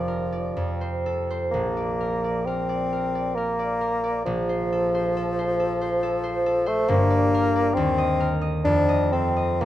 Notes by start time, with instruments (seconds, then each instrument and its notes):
Already playing: harp F1 F2 D5, bassoon F3
0.08 harp A#4
0.32 harp D5
0.57 harp F2
0.81 harp C5
1.06 harp A4
1.30 harp C5
1.51 harp A#1, bassoon A#3
1.77 harp D5
2.01 harp A#4
2.24 harp D5
2.46 bassoon C4, harp A#4
2.69 harp D5
2.93 harp A#4
3.15 harp D5
3.35 bassoon A#3, harp A#4
3.59 harp D5
3.81 harp A#4
4.04 harp D5
4.25 harp A#1, bassoon F3
4.49 harp C5
4.72 harp A4
4.94 harp C5
5.17 harp A4
5.39 harp C5
5.60 harp A4
5.81 harp C5
6.03 harp A4
6.24 harp C5
6.46 harp A4
6.66 bassoon A3, harp C5
6.88 harp G1 G2, bassoon A#3
7.10 harp D5
7.34 harp A#4
7.56 harp D5
7.74 harp D#2, bassoon C4
7.98 harp D#5
8.20 harp A#4
8.41 harp D#5
8.65 harp F2, bassoon D4
8.89 harp D#5
9.12 bassoon C4, harp A4
9.36 harp D#5
9.61 harp A#1, bassoon A#3